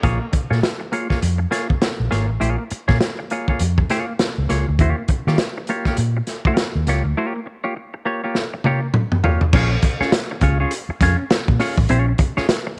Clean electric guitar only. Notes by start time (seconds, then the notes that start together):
0.03 A#3 F4 G#4 C#5
0.21 muted clean electric guitar stroke
0.32 muted clean electric guitar stroke
0.50 A#3 F4 G#4 C#5
0.80 muted clean electric guitar stroke
0.92 A#3 F4 G#4 C#5
1.10 A#3 F4 G#4 C#5
1.22 muted clean electric guitar stroke
1.38 muted clean electric guitar stroke
1.51 A#3 F4 G#4 C#5
1.69 muted clean electric guitar stroke
1.81 muted clean electric guitar stroke
2.11 A#3 F4 G#4 C#5
2.28 muted clean electric guitar stroke
2.40 A#3 F4 G#4 C#5
2.58 muted clean electric guitar stroke
2.71 muted clean electric guitar stroke
2.88 A#3 F4 G#4 C#5
3.19 muted clean electric guitar stroke
3.31 A#3 F4 G#4 C#5
3.49 A#3 F4 G#4 C#5
3.78 muted clean electric guitar stroke
3.90 A#3 F4 G#4 C#5
4.08 muted clean electric guitar stroke
4.20 muted clean electric guitar stroke
4.49 A#3 F4 G#4 C#5
4.68 muted clean electric guitar stroke
4.80 A#3 F4 G4 C#5
4.98 muted clean electric guitar stroke
5.10 muted clean electric guitar stroke
5.28 A#3 F4 G4 C#5
5.40 muted clean electric guitar stroke
5.57 muted clean electric guitar stroke
5.69 A#3 F4 G4 C#5
5.87 A#3 F4 G4 C#5
5.99 muted clean electric guitar stroke
6.17 muted clean electric guitar stroke
6.47 A#3 F4 G4 C#5
6.88 A#3 F4 G4 C#5
7.05 muted clean electric guitar stroke
7.17 A#3 F4 G4 C#5
7.36 muted clean electric guitar stroke
7.46 muted clean electric guitar stroke
7.64 A#3 F4 G4 C#5
7.76 muted clean electric guitar stroke
7.94 muted clean electric guitar stroke
8.05 A#3 F4 G4 C#5
8.24 A#3 F4 G4 C#5
8.54 muted clean electric guitar stroke
8.65 A#3 F4 G4 C#5
8.83 muted clean electric guitar stroke
8.95 muted clean electric guitar stroke
9.24 A#3 F4 G4 C#5
9.43 muted clean electric guitar stroke
9.54 C#4 F4 G#4 C#5
9.72 muted clean electric guitar stroke
9.84 muted clean electric guitar stroke
10.01 C#4 F4 G#4 C#5
10.14 muted clean electric guitar stroke
10.31 muted clean electric guitar stroke
10.42 C#4 F4 G#4 C#5
10.60 C#4 F4 G#4 C#5
10.90 muted clean electric guitar stroke
11.02 C#4 F4 G#4 C#5
11.19 muted clean electric guitar stroke
11.31 muted clean electric guitar stroke
11.60 C#4 F4 G#4 C#5
11.78 muted clean electric guitar stroke
11.90 C#4 F4 G#4 C#5
12.08 muted clean electric guitar stroke
12.20 muted clean electric guitar stroke
12.37 C#4 F4 G#4 C#5
12.67 muted clean electric guitar stroke